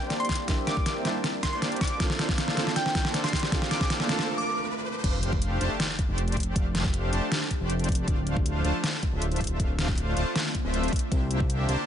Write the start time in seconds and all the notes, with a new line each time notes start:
Already playing: G3 A#3 C4 D4 E4 A#4 D5, riser
0.01 A#3 D4 G4 C5 D5
0.10 snare, closed hi-hat
0.20 C6, closed hi-hat
0.25 closed hi-hat
0.29 C6, kick, snare, closed hi-hat
0.32 closed hi-hat
0.35 closed hi-hat
0.46 G3 A#3 D4 G4 C5 E5, kick, snare, closed hi-hat
0.50 E4
0.67 D6, snare, closed hi-hat
0.77 kick
0.86 snare, closed hi-hat
1.03 G3 A#3 D4 G4 C5 A5, snare, closed hi-hat
1.07 E4
1.24 snare, closed hi-hat
1.43 C6, kick, snare, closed hi-hat
1.53 A#3 D4 G4 C5 D5 C6
1.62 snare, closed hi-hat
1.72 closed hi-hat
1.76 closed hi-hat
1.81 D6, kick, snare, closed hi-hat
1.84 closed hi-hat
1.87 closed hi-hat
1.98 A#3 C4 D4 A4 C5 F5, kick, snare, closed hi-hat
2.02 F4
2.10 snare
2.19 snare, closed hi-hat
2.29 kick, snare
2.38 snare, closed hi-hat
2.48 snare
2.55 A#3 C4 D4 A4 C5 A5, snare, closed hi-hat
2.59 F4
2.67 snare
2.76 G5, snare, closed hi-hat
2.86 snare
2.95 kick, snare, closed hi-hat
3.05 A#3 D4 A4 C5 D5, snare
3.14 snare, closed hi-hat
3.24 C6, snare, closed hi-hat
3.29 closed hi-hat
3.33 C6, kick, snare, closed hi-hat
3.36 closed hi-hat
3.39 snare, closed hi-hat
3.50 A#3 C4 D4 A4 C5 F5, kick, snare, closed hi-hat
3.54 F4
3.62 snare
3.71 D6, snare, closed hi-hat
3.81 D6, kick, snare
3.90 snare, closed hi-hat
4.00 snare
4.07 A3 A#3 C4 D4 A4 C5 A5, snare, closed hi-hat
4.11 F4
4.19 snare
4.38 D6
5.04 F1 F3 A3 D4 G4 C5 F5, kick, closed hi-hat, crash, impact
5.23 closed hi-hat
5.33 kick
5.42 closed hi-hat
5.61 F1 A3 D4 G4 C5 A5, closed hi-hat
5.80 snare, closed hi-hat
5.99 kick, closed hi-hat
6.08 F1 A3 D4 G4 C5 D5
6.18 closed hi-hat
6.28 closed hi-hat
6.32 closed hi-hat
6.37 kick, closed hi-hat
6.40 closed hi-hat
6.43 closed hi-hat
6.56 F1 A3 D4 G4 C5 F5, kick, closed hi-hat
6.75 snare, closed hi-hat
6.85 kick
6.94 closed hi-hat
7.13 F1 A3 D4 G4 C5 A5, closed hi-hat
7.32 snare, closed hi-hat
7.51 kick, closed hi-hat
7.61 F1 A3 D4 G4 C5 D5
7.70 closed hi-hat
7.79 closed hi-hat
7.84 closed hi-hat
7.89 kick, closed hi-hat
7.92 closed hi-hat
7.95 closed hi-hat
8.08 D1 D3 A3 C4 D4 F4 C5 F5, kick, closed hi-hat
8.27 closed hi-hat
8.37 kick
8.46 closed hi-hat
8.65 D1 A3 D4 F4 C5 A5, closed hi-hat
8.84 snare, closed hi-hat
9.03 kick, closed hi-hat
9.13 D1 A3 D4 F4 C5 E5
9.22 closed hi-hat
9.32 closed hi-hat
9.36 closed hi-hat
9.41 kick, closed hi-hat
9.44 closed hi-hat
9.47 closed hi-hat
9.60 D1 A3 D4 F4 C5 F5, kick, closed hi-hat
9.79 snare, closed hi-hat
9.88 kick
9.98 closed hi-hat
10.16 D1 A3 D4 F4 C5 A5, closed hi-hat
10.36 snare, closed hi-hat
10.55 kick, closed hi-hat
10.64 D1 A3 D4 F4 C5 E5
10.74 closed hi-hat
10.83 closed hi-hat
10.88 closed hi-hat
10.93 A#3 E4, kick, closed hi-hat
10.96 closed hi-hat
10.99 closed hi-hat
11.11 C2 A#3 D4 G4 C5 E5, kick, closed hi-hat, ride
11.31 closed hi-hat
11.40 kick
11.50 closed hi-hat
11.68 C2 A#3 D4 G4 C5 A5, closed hi-hat